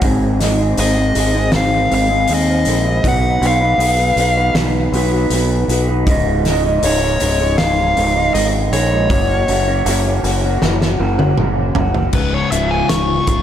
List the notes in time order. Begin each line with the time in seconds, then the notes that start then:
0.02 G#1 G#2 D#3 G#3 C4 D#4 G#4, kick, open hi-hat
0.40 G#3 C4 D#4 G#4, snare, open hi-hat
0.58 G#3 C4 D#4 G#4
0.78 G#1 G#2 D#3 G#3 C4 D#4 G#4 D#5, open hi-hat
0.96 G#3 C4 D#4 G#4
1.15 G#1 G#3 C4 D#4 G#4, open hi-hat
1.33 G#3 C4 D#4 G#4
1.52 G#1, snare, open hi-hat
1.56 F5
1.90 G#1 G#3 C4 D#4 G#4, open hi-hat
1.94 F5
2.09 G#3 C4 D#4 G#4
2.28 D#2 G#2 D#3 G#3 C4 D#4 G#4, open hi-hat
2.34 D#5
2.65 A#1 G#3 C4 D#4, open hi-hat
2.69 G#4
2.85 G#3 C4 D#4 G#4
3.04 B1 B2 F#3 B3 D#4 F#4 B4, kick, open hi-hat
3.08 F#5
3.41 B1 B3 D#4 F#4 B4, open hi-hat
3.47 F5
3.60 B3 D#4 F#4 B4
3.78 B1 B2 F#3 B3 D#4 F#4 B4, open hi-hat
3.98 B3 D#4 F#4 B4
4.16 B1 B3 D#4 F#4 B4, open hi-hat
4.37 B3 D#4 F#4 B4
4.54 B1, snare, open hi-hat
4.92 B1 B3 D#4 F#4, open hi-hat
4.96 B4
5.12 B3 D#4 F#4 B4
5.30 B1 B2 F#3 B3, open hi-hat
5.34 D#4 F#4 B4
5.68 B1 B3 D#4 F#4 B4, open hi-hat
5.88 B3 D#4 F#4 B4
6.07 C#1 C#2 G#2 C#3 G#3 D#4, kick, open hi-hat
6.45 G#2 C#3 G#3, snare, open hi-hat
6.49 D#4
6.64 C#3 G#3 D#4
6.83 C#1 C#2 G#2 C#3 G#3 D#4 C#5, open hi-hat
7.01 C#3 G#3 D#4
7.20 C#1 G#2 C#3 G#3 D#4, open hi-hat
7.38 C#3 G#3 D#4
7.58 C#1 F5, snare, open hi-hat
7.95 C#1 G#2 C#3 G#3 D#4, open hi-hat
8.14 C#3 G#3 D#4
8.33 G#1 C#2 G#2 C#3 G#3 D#4 D#5, open hi-hat
8.72 A#1 G#2 C#3 G#3 D#4 C#5, open hi-hat
8.92 C#3 G#3 D#4
9.10 F#1 F#2 C#3 F#3 A#3 C#4 F#4, kick, open hi-hat
9.47 F#1 F#3 A#3 C#4 F#4, open hi-hat
9.68 F#3 A#3 C#4 F#4
9.86 F#1 F#2 C#3 F#3 A#3 C#4 F#4, open hi-hat
10.05 F#3 A#3 C#4 F#4
10.23 F#1 F#3 A#3 C#4 F#4, open hi-hat
10.42 F#3 A#3 C#4 F#4
10.62 F#1, snare
10.82 snare
10.99 F#1 F#3 A#3 C#4 F#4
11.18 F#3 A#3 C#4 F#4, high tom
11.37 F#1 F#2 C#3 F#3 A#3 C#4 F#4, mid tom
11.75 F#1 F#3 A#3 C#4, floor tom
11.79 F#4
11.94 F#3 A#3 C#4 F#4, floor tom
12.13 C#1 C#2 G#2 C#3 B4, kick, crash
12.34 C#5
12.51 C#1 C#2 G#2 C#3 F4 E5, closed hi-hat
12.71 G#5
12.89 C#1 C#2 G#2 C#3 C#6, snare, closed hi-hat
13.26 C#1 C#2 G#2 C#3 F4 C#6, kick, closed hi-hat